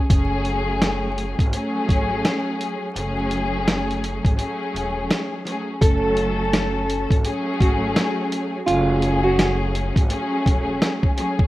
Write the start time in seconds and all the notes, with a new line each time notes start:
0.08 F#1 F#3 A3 C#4 G#4, kick, closed hi-hat
0.45 closed hi-hat
0.82 cross-stick, snare, closed hi-hat
1.18 closed hi-hat
1.39 G#1, kick, closed hi-hat
1.52 F#3 A3 C#4 G#4, closed hi-hat
1.89 G#1, kick, closed hi-hat
2.25 cross-stick, snare, closed hi-hat
2.61 closed hi-hat
2.95 F#1 F#3 A3 C#4 G#4, closed hi-hat
3.31 closed hi-hat
3.68 cross-stick, snare, closed hi-hat
3.91 closed hi-hat
4.04 closed hi-hat
4.25 G#1, kick, closed hi-hat
4.37 F#3 A3 C#4 G#4, closed hi-hat
4.74 E1, closed hi-hat
5.11 cross-stick, snare, closed hi-hat
5.44 F#3 A3 C#4 G#4, snare, closed hi-hat
5.80 F#1 F#3 A3 C#4 A4, kick, closed hi-hat
6.17 closed hi-hat
6.53 cross-stick, snare, closed hi-hat
6.90 closed hi-hat
7.10 G#1, kick, closed hi-hat
7.23 F#3 A3 C#4 G#4, closed hi-hat
7.61 G#1 F#4, kick, closed hi-hat
7.96 cross-stick, snare, closed hi-hat
8.32 closed hi-hat
8.66 F#1 F#3 A3 C#4 F4 G#4, closed hi-hat
9.02 closed hi-hat
9.23 F#4
9.39 cross-stick, snare, closed hi-hat
9.75 closed hi-hat
9.96 G#1, kick, closed hi-hat
10.08 F#3 A3 C#4 G#4, closed hi-hat
10.46 E1, kick, closed hi-hat
10.82 cross-stick, snare, closed hi-hat
11.03 kick
11.16 F#3 A3 C#4 G#4, closed hi-hat
11.39 kick